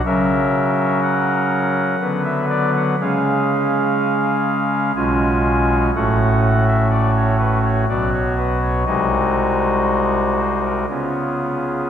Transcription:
X:1
M:3/4
L:1/16
Q:1/4=61
K:F#m
V:1 name="Pipe organ"
e4 f4- f e d f | ^e8 g4 | f3 e d c B c d c B c | ^d6 ^B ^A G4 |]
V:2 name="Pipe organ" clef=bass
[C,F,C^A]8 [D,F,B,B]4 | [C,G,CG]8 [B,,,B,,G,C^E]4 | [A,,,A,,A,CF]8 [B,,,B,,F,B,F]4 | [^B,,,^B,,G,^DF]8 [C,=B,C^E]4 |]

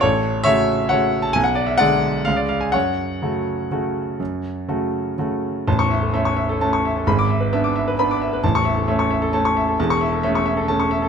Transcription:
X:1
M:3/4
L:1/16
Q:1/4=131
K:F#m
V:1 name="Grand piano"
[Ac]4 [ce]4 [cf]3 a | g f d e [df]4 ^e d e g | [cf]12- | [cf]8 z4 |
[K:A] a c' e A e c' e A a c' e A | b d' e B e d' e B b d' e B | a c' e A e c' e A a c' e A | a c' e A e c' e A a c' e A |]
V:2 name="Grand piano"
A,,,4 [C,A,F]4 [C,A,F]4 | B,,,4 [D,G,G]4 [C,,C,G,G]4 | F,,4 [C,A,F]4 [C,A,F]4 | F,,4 [C,A,F]4 [C,A,F]4 |
[K:A] [A,,,,A,,,]4 [A,C]4 [A,C]4 | [G,,,G,,]4 [B,D]4 [B,D]4 | [A,,,,A,,,]4 [A,C]4 [A,C]4 | [E,,,E,,]4 [A,C]4 [A,C]4 |]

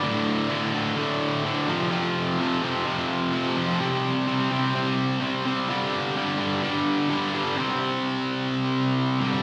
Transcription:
X:1
M:4/4
L:1/8
Q:1/4=127
K:Clyd
V:1 name="Distorted electric guitar" clef=bass
[D,,A,,D,]2 [D,,A,,D,] [D,,A,,D,] [D,,A,,D,]2 [D,,A,,D,] [=F,,C,=F,] | [=F,,C,=F,]2 [F,,C,F,] [F,,C,F,] [F,,C,F,]2 [F,,C,F,] [F,,C,F,] | [C,G,C]2 [C,G,C] [C,G,C] [C,G,C]2 [C,G,C] [C,G,C] | [G,,D,G,]2 [G,,D,G,] [G,,D,G,] [G,,D,G,]2 [G,,D,G,] [G,,D,G,] |
[C,G,C]6- [C,G,C] [G,,D,G,] |]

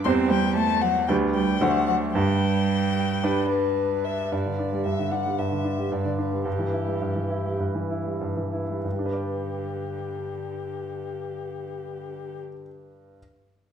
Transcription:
X:1
M:4/4
L:1/16
Q:1/4=109
K:G
V:1 name="Violin"
c'2 g2 a2 f2 g2 g2 f2 f2 | g8- g2 B4 e2 | d4 e2 f2 e4 d2 B2 | G8 z8 |
G16- | G16 |]
V:2 name="Cello" clef=bass
C2 G,2 A,2 F,2 G,2 G,2 F,2 F,2 | G,12- G,2 z2 | z4 G,4 z4 G,4 | z4 E,4 z4 E,4 |
D,16- | D,16 |]
V:3 name="Grand piano" clef=bass
[E,,G,Cc]8 [D,,G,DB]4 [D,,A,Dc]4 | G,,8 [G,DB]8 | G,, D, D G, G,, D, D G, G,, D, D G, G,, D, D G, | G,, E, E G, G,, E, E G, G,, E, E G, G,, E, E G, |
[G,,G,DBd]16- | [G,,G,DBd]16 |]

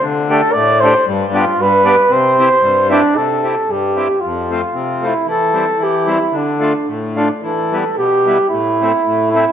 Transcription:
X:1
M:2/4
L:1/8
Q:"Swing" 1/4=113
K:C
V:1 name="Flugelhorn"
z A d c | z F B2 | c3 D | A2 G2 |
F3 E | A2 G E | D2 z D | A2 G2 |
E3 E |]
V:2 name="Accordion"
z [A,DG] z [A,DG] | z [B,DG] z [B,DG] | z [CEG] z [CEG] | z [CEG] z [CEG] |
z [A,CF] z [A,CF] | z [G,CE] z [G,CE] | z [A,DF] z [A,DF] | z [G,B,E] z [G,B,E] |
z [A,CE] z [A,CE] |]
V:3 name="Accordion" clef=bass
D,2 A,,2 | G,,2 G,,2 | C,2 G,,2 | C,2 G,,2 |
F,,2 C,2 | E,2 E,2 | D,2 A,,2 | E,2 B,,2 |
A,,2 A,,2 |]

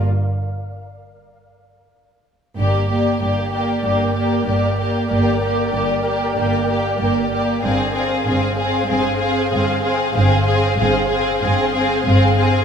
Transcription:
X:1
M:4/4
L:1/8
Q:1/4=95
K:Gphr
V:1 name="Violin section"
z8 | d d d d d d d d | d d d d d d d d | f f f f f f f f |
f f f f f f f f |]
V:2 name="Synth texture"
z8 | [Bdg]8- | [Bdg]8 | [Acf]8- |
[Acf]8 |]
V:3 name="Violin section"
z8 | G G G G G G G G | G G G G G G G G | A A A A A A A A |
A A A A A A A A |]
V:4 name="Viola section"
z8 | B, B, B, B, B, B, B, B, | B, B, B, B, B, B, B, B, | C C C C C C C C |
C C C C C C C C |]
V:5 name="Cello section" clef=bass
z8 | G,,2 G,,2 G,,2 G,,2 | G,,2 G,,2 G,,2 G,,2 | G,,2 G,,2 G,,2 G,,2 |
G,,2 G,,2 G,,2 G,,2 |]
V:6 name="Double bass section" clef=bass
z8 | G,,,2 G,,,2 G,,,2 G,,,2 | G,,,2 G,,,2 G,,,2 G,,,2 | G,,,2 G,,,2 G,,,2 G,,,2 |
G,,,2 G,,,2 G,,,2 G,,,2 |]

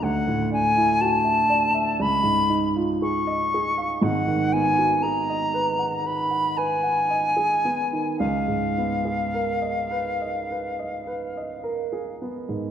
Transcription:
X:1
M:4/4
L:1/16
Q:1/4=58
K:C#mix
V:1 name="Flute"
f2 g2 =a4 b2 z2 c'4 | f2 g2 a4 b2 g6 | e12- e2 z2 |]
V:2 name="Grand piano"
=D,, =A,, =D =E F =e =d e C,, G,, ^D ^E G ^d G ^e | [G,,,G,,] D, B, F G d B f B f B f d G B, D, | C,, G,, B, G A d B d B d B d A G B, G,, |]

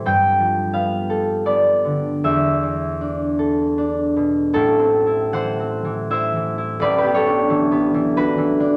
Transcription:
X:1
M:3/4
L:1/16
Q:1/4=81
K:Am
V:1 name="Harp"
g4 f4 d4 | e12 | [EA]4 [c^f]4 [ce]4 | [Bd] [GB] [A^c]6 [^FB]4 |]
V:2 name="Harp"
[G,,G,A]2 F,2 B,2 A2 B,2 D,2 | E,,2 E,2 D2 A2 D2 B,,2 | (3[A,,,A,,]2 C2 E2 (3E,2 C2 E,2 (3E2 E,2 E2 | (3[A,,,A,,]2 B,2 D2 (3E,2 B,2 E,2 (3D2 E,2 D2 |]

